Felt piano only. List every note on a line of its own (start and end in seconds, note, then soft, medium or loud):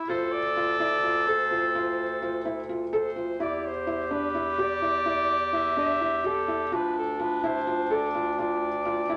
0.09 0.37 F4 medium
0.56 0.70 F4 medium
0.80 0.94 E4 medium
1.03 1.17 F4 medium
1.27 1.41 A4 medium
1.51 1.65 F4 medium
1.75 2.03 F4 medium
2.22 2.36 F4 medium
2.45 2.59 E4 medium
2.69 2.83 F4 medium
2.93 3.07 A4 medium
3.16 3.30 F4 medium
3.40 3.68 E4 medium
3.87 4.01 E4 medium
4.11 4.25 D4 medium
4.35 4.49 E4 medium
4.58 4.72 G4 medium
4.82 4.96 E4 medium
5.06 5.34 E4 medium
5.53 5.67 E4 medium
5.77 5.91 D4 medium
6.01 6.15 E4 medium
6.24 6.38 G4 medium
6.48 6.62 E4 medium
6.72 7.00 F4 medium
7.19 7.33 F4 medium
7.44 7.57 E4 medium
7.67 7.81 F4 medium
7.90 8.04 A4 medium
8.14 8.28 F4 medium
8.38 8.66 F4 medium
8.85 8.99 F4 medium
9.09 9.17 E4 medium